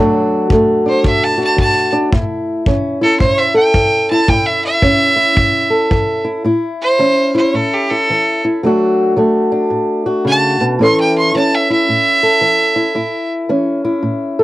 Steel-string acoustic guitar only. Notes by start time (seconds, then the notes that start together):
Already playing: D3 F#3 A3
0.00 D4 F#4
0.51 F#3 A3
0.86 D4
1.03 A2
1.38 F#4
1.56 F#3
1.93 D4
2.12 A2 E4
2.67 E3 C#4
3.01 E4
3.20 A2
3.54 A4
3.74 E3
4.11 E4
4.28 A2 E4
4.82 E3 C#4
5.16 E4
5.35 A2
5.70 A4
5.91 E3
6.25 E4
6.44 A2 E4
6.99 E3 C#4
7.35 E4
7.54 A2
7.91 E4
8.10 E3
8.45 E4
8.63 D3 F#3 A3 D4 F#4
9.16 F#3 A3
9.52 D4
9.70 A2
10.06 F#4
10.25 C#3
10.61 B2
10.79 A2 E3 C#4 E4 A4
11.35 E3 C#4
11.70 E4
11.89 A2
12.23 A4
12.41 E3
12.76 E4
12.95 A2 E4
13.49 E3 C#4
13.85 E4
14.03 A2
14.39 A4